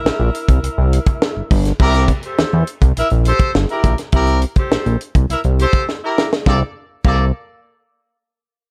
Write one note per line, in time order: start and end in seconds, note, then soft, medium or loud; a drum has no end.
0.00 1.47 E4 medium
0.00 1.47 A#4 medium
0.00 1.47 E5 medium
0.05 0.11 A#1 soft
0.05 snare loud
0.20 0.30 A#1 medium
0.35 closed hi-hat medium
0.49 0.59 C2 medium
0.49 kick loud
0.49 closed hi-hat medium
0.64 0.69 C2 soft
0.64 closed hi-hat loud
0.78 0.99 C2 medium
0.93 closed hi-hat medium
1.06 kick loud
1.06 closed hi-hat medium
1.22 snare loud
1.36 1.42 G1 soft
1.51 1.72 G1 medium
1.51 kick loud
1.51 open hi-hat medium
1.65 snare soft
1.65 closed hi-hat medium
1.80 2.12 C2 loud
1.80 2.04 E4 loud
1.80 2.04 G4 loud
1.80 2.03 A#4 loud
1.80 kick loud
1.80 crash medium
1.94 snare soft
1.94 closed hi-hat soft
2.08 kick medium
2.08 closed hi-hat medium
2.23 2.66 G4 medium
2.23 2.66 A4 medium
2.23 2.66 C5 medium
2.23 closed hi-hat soft
2.39 2.45 E2 soft
2.39 snare loud
2.53 2.64 E2 medium
2.67 closed hi-hat medium
2.82 2.93 C2 medium
2.82 kick medium
2.82 closed hi-hat medium
2.97 3.03 A#1 soft
2.97 3.07 E4 medium
2.97 3.06 A#4 medium
2.97 3.06 E5 loud
2.97 closed hi-hat medium
3.10 3.33 A#1 medium
3.10 closed hi-hat soft
3.25 3.49 G4 loud
3.25 3.50 A4 loud
3.25 3.49 C5 loud
3.25 closed hi-hat medium
3.39 kick loud
3.39 closed hi-hat medium
3.55 3.66 G1 medium
3.55 snare medium
3.69 3.93 E4 medium
3.69 3.93 G4 medium
3.69 3.93 A#4 medium
3.69 closed hi-hat soft
3.84 3.95 A#1 loud
3.84 kick loud
3.84 closed hi-hat medium
3.98 snare soft
3.98 closed hi-hat medium
4.12 4.45 C2 loud
4.12 4.37 E4 loud
4.12 4.37 G4 loud
4.12 4.37 A#4 loud
4.12 kick loud
4.12 closed hi-hat medium
4.27 closed hi-hat soft
4.42 closed hi-hat medium
4.56 4.98 G4 medium
4.56 4.98 A4 medium
4.56 4.98 C5 medium
4.56 kick medium
4.56 closed hi-hat soft
4.71 4.77 A#1 soft
4.71 snare loud
4.86 4.97 A#1 medium
4.86 closed hi-hat soft
5.01 closed hi-hat medium
5.15 5.26 C2 medium
5.15 kick medium
5.15 closed hi-hat medium
5.30 5.36 C2 soft
5.30 5.39 E4 medium
5.30 5.39 A#4 medium
5.30 5.39 E5 medium
5.30 closed hi-hat medium
5.44 5.66 C2 medium
5.44 closed hi-hat soft
5.59 5.83 G4 loud
5.59 5.83 A4 loud
5.59 5.83 C5 loud
5.59 closed hi-hat medium
5.73 kick loud
5.73 closed hi-hat medium
5.89 snare medium
6.03 6.26 E4 medium
6.03 6.26 G4 medium
6.03 6.27 A#4 medium
6.18 snare loud
6.33 snare medium
6.46 6.63 C2 loud
6.46 6.59 A#3 medium
6.46 6.59 A4 medium
6.46 6.59 D5 loud
6.46 kick loud
6.46 snare medium
7.04 7.32 C2 medium
7.04 7.25 A#3 medium
7.04 7.25 A4 medium
7.04 7.25 D5 loud
7.04 kick loud
7.04 crash medium